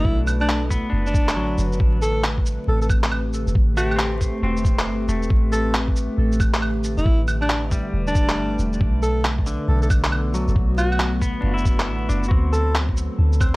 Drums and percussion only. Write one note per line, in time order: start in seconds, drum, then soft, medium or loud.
0.05 kick loud
0.27 claves medium
0.27 shaker medium
0.41 claves medium
0.49 clap loud
0.70 kick medium
0.70 shaker medium
1.07 shaker soft
1.14 kick loud
1.14 shaker medium
1.29 clap loud
1.29 shaker soft
1.58 shaker medium
1.73 shaker soft
1.80 kick loud
2.02 shaker medium
2.24 clap loud
2.38 kick medium
2.46 shaker medium
2.82 shaker soft
2.90 kick loud
2.90 claves medium
2.90 shaker medium
3.04 clap loud
3.12 claves medium
3.34 shaker medium
3.48 shaker soft
3.55 kick loud
3.77 claves medium
3.77 shaker medium
3.91 claves medium
3.99 clap loud
4.21 kick medium
4.21 shaker medium
4.57 shaker soft
4.65 kick loud
4.65 shaker medium
4.79 clap loud
5.09 shaker medium
5.23 shaker soft
5.30 kick loud
5.53 shaker medium
5.74 clap loud
5.88 kick medium
5.96 shaker medium
6.32 shaker soft
6.40 kick loud
6.40 claves medium
6.40 shaker medium
6.54 clap loud
6.62 claves medium
6.84 shaker medium
6.98 shaker soft
7.06 kick loud
7.28 claves medium
7.28 shaker medium
7.42 claves medium
7.50 clap loud
7.71 kick medium
7.71 shaker medium
8.07 shaker soft
8.15 kick loud
8.15 shaker medium
8.29 clap loud
8.59 shaker medium
8.73 shaker soft
8.81 kick loud
9.03 shaker medium
9.25 clap loud
9.38 kick medium
9.46 shaker medium
9.82 shaker soft
9.90 kick loud
9.90 claves medium
9.90 shaker medium
10.04 clap loud
10.12 claves medium
10.34 shaker medium
10.48 shaker soft
10.56 kick loud
10.78 claves medium
10.78 shaker medium
10.92 claves medium
11.00 clap loud
11.22 kick medium
11.22 shaker medium
11.58 shaker soft
11.65 kick loud
11.65 shaker medium
11.80 clap loud
12.10 shaker medium
12.24 shaker soft
12.31 kick loud
12.53 shaker medium
12.75 clap loud
12.89 kick medium
12.97 shaker medium
13.33 shaker soft
13.41 kick loud
13.41 claves medium
13.41 shaker medium